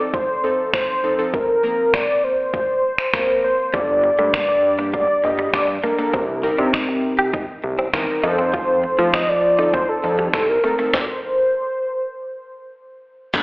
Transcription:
Already playing: soft synth lead D5
0.00 synth keys F3 C4 D#4 A4
0.14 soft synth lead C5, kick
0.44 synth keys F3 C4 D#4 A4
0.73 soft synth lead C5, finger snap, kick
1.03 synth keys F3 C4 D#4 A4
1.18 synth keys F3 C4 D#4 A4
1.34 soft synth lead A#4, kick
1.63 synth keys F3 A#3 C4 A#4
1.94 soft synth lead D5, finger snap, kick
2.24 soft synth lead C5
2.54 kick
2.98 finger snap
3.13 synth keys F3 A#3 C4 A#4, finger snap, kick
3.44 soft synth lead C5
3.73 analog synth bass G1, synth keys G3 A#3 D4 A4, clean electric guitar G3, soft synth lead D5, kick
4.04 muted clean electric guitar stroke
4.19 analog synth bass G2, clean electric guitar A3
4.34 clean electric guitar A#3, soft synth lead D5, finger snap, kick
4.49 muted clean electric guitar stroke
4.79 synth keys G3 A#3 D4 G4, clean electric guitar D4
4.94 clean electric guitar A#3, soft synth lead D5, kick
5.23 analog synth bass G1, synth keys D3 G3 A#3 G4, soft synth lead D#5, muted clean electric guitar stroke
5.39 clean electric guitar G3
5.53 analog synth bass G2, soft synth lead D5, finger snap, muted clean electric guitar stroke, kick
5.83 synth keys G3 A#3 D4 A4, clean electric guitar A#3, soft synth lead A#4
5.98 synth keys G3 A#3 D4 A4, clean electric guitar A#3
6.13 analog synth bass C2, clean electric guitar C4, kick
6.43 synth keys G3 C4 D#4 A#4, muted clean electric guitar stroke
6.58 analog synth bass C3, clean electric guitar D4
6.73 clean electric guitar D#4, finger snap, kick
6.89 muted clean electric guitar stroke
7.19 clean electric guitar G4
7.33 clean electric guitar D#4, kick
7.64 analog synth bass C2, muted clean electric guitar stroke
7.79 clean electric guitar C4
7.93 analog synth bass E2, synth keys G3 C4 D#4 A#4, finger snap, muted clean electric guitar stroke, kick
8.23 analog synth bass F2, synth keys F3 C4 D#4 A4, clean electric guitar D#4, soft synth lead C5
8.38 clean electric guitar C4
8.54 clean electric guitar F4, kick
8.84 muted clean electric guitar stroke
8.98 analog synth bass F3, clean electric guitar A3
9.13 clean electric guitar C4, soft synth lead D#5, finger snap, kick
9.29 soft synth lead D5, muted clean electric guitar stroke
9.59 synth keys F3 C4 D#4 A4, clean electric guitar D#4
9.74 clean electric guitar C4, soft synth lead C5, kick
9.89 soft synth lead A4
10.03 analog synth bass F2, synth keys F3 C4 D#4 A4, muted clean electric guitar stroke
10.19 clean electric guitar G3
10.33 analog synth bass C2, soft synth lead A4, finger snap, muted clean electric guitar stroke, kick
10.49 soft synth lead A#4
10.64 synth keys F3 C4 D#4 A4, clean electric guitar A3
10.78 synth keys F3 C4 D#4 A4, clean electric guitar A3
10.94 soft synth lead C5, kick, snare
11.01 soft synth lead D5
11.08 soft synth lead C5
13.34 analog synth bass G1, analog synth pad D3 G3 A#3 G4, kick, crash, shaker

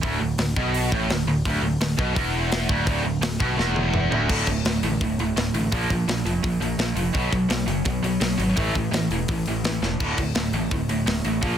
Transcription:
0.03 picked electric bass D1, distorted electric guitar D2, kick, open hi-hat
0.21 picked electric bass D1, distorted electric guitar D2
0.38 picked electric bass D1, distorted electric guitar D2, snare, open hi-hat
0.56 picked electric bass B1, distorted electric guitar B2, kick
0.74 open hi-hat
0.92 picked electric bass A1, distorted electric guitar A2, kick
1.09 picked electric bass D1, distorted electric guitar D2, snare, open hi-hat
1.26 picked electric bass D1, distorted electric guitar D2
1.45 picked electric bass D1, distorted electric guitar D2, kick, open hi-hat
1.60 picked electric bass D1, distorted electric guitar D2
1.79 picked electric bass D1, distorted electric guitar D2, snare, open hi-hat
1.98 picked electric bass B1, distorted electric guitar B2, kick
2.15 picked electric bass E1, distorted electric guitar E2, kick, open hi-hat
2.52 snare, open hi-hat
2.69 picked electric bass D1, distorted electric guitar D2, kick
2.87 picked electric bass D1, distorted electric guitar D2, kick, open hi-hat
3.04 picked electric bass D1, distorted electric guitar D2
3.21 picked electric bass D1, distorted electric guitar D2, snare, open hi-hat
3.40 picked electric bass B1, distorted electric guitar B2, kick
3.57 picked electric bass E1, distorted electric guitar E2, snare
3.76 high tom
3.94 mid tom
4.11 picked electric bass D1, distorted electric guitar D2, floor tom
4.29 picked electric bass D1, distorted electric guitar D2 A2 D3, kick, crash
4.47 picked electric bass D1, distorted electric guitar D2 A2, kick, open hi-hat
4.65 picked electric bass D1, distorted electric guitar D2 A2, snare, open hi-hat
4.83 picked electric bass A1, distorted electric guitar D2 A2, open hi-hat
5.00 picked electric bass D1, distorted electric guitar D2 A2, kick, open hi-hat
5.18 picked electric bass D1, distorted electric guitar D2 A2, open hi-hat
5.36 picked electric bass D1, distorted electric guitar D2 A2, snare, open hi-hat
5.54 picked electric bass A1, distorted electric guitar D2 A2, open hi-hat
5.72 picked electric bass A#1, distorted electric guitar A#2 F3 A#3, kick, open hi-hat
5.90 picked electric bass A#1, distorted electric guitar A#2 F3, kick, open hi-hat
6.08 picked electric bass A#1, distorted electric guitar A#2 F3, snare, open hi-hat
6.25 picked electric bass F1, distorted electric guitar A#2 F3, open hi-hat
6.43 picked electric bass A#1, distorted electric guitar A#2 F3, kick, open hi-hat
6.60 picked electric bass A#1, distorted electric guitar A#2 F3, open hi-hat
6.78 picked electric bass A#1, distorted electric guitar A#2 F3, snare, open hi-hat
6.95 picked electric bass F1, distorted electric guitar A#2 F3, open hi-hat
7.14 picked electric bass B1, distorted electric guitar B2 F#3 B3, kick, open hi-hat
7.32 picked electric bass B1, distorted electric guitar B2 F#3, kick, open hi-hat
7.49 picked electric bass B1, distorted electric guitar B2 F#3, snare, open hi-hat
7.67 picked electric bass F#1, distorted electric guitar B2 F#3, open hi-hat
7.85 picked electric bass B1, distorted electric guitar B2 F#3, kick, open hi-hat
8.03 picked electric bass B1, distorted electric guitar B2 F#3, open hi-hat
8.20 picked electric bass B1, distorted electric guitar B2 F#3, snare, open hi-hat
8.38 picked electric bass G#1, distorted electric guitar B2 F#3, open hi-hat
8.56 picked electric bass A1, distorted electric guitar A2 E3 A3, kick, open hi-hat
8.74 picked electric bass A1, distorted electric guitar A2 E3, kick, open hi-hat
8.92 picked electric bass A1, distorted electric guitar A2 E3, snare, open hi-hat
9.10 picked electric bass E1, distorted electric guitar A2 E3, open hi-hat
9.28 picked electric bass A1, distorted electric guitar A2 E3, kick, open hi-hat
9.46 picked electric bass A1, distorted electric guitar A2 E3, open hi-hat
9.64 picked electric bass A1, distorted electric guitar A2 E3, snare, open hi-hat
9.82 picked electric bass E1, distorted electric guitar A2 E3, snare
10.00 picked electric bass D1, distorted electric guitar D2 A2 D3, kick, crash
10.18 picked electric bass D1, distorted electric guitar D2 A2, kick, open hi-hat
10.35 picked electric bass D1, distorted electric guitar D2 A2, snare, open hi-hat
10.52 picked electric bass A1, distorted electric guitar D2 A2, open hi-hat
10.71 picked electric bass D1, distorted electric guitar D2 A2, kick, open hi-hat
10.88 picked electric bass D1, distorted electric guitar D2 A2, open hi-hat
11.06 picked electric bass D1, distorted electric guitar D2 A2, snare, open hi-hat
11.25 picked electric bass A1, distorted electric guitar D2 A2, open hi-hat
11.41 picked electric bass A#1, distorted electric guitar A#2 F3 A#3, kick, open hi-hat

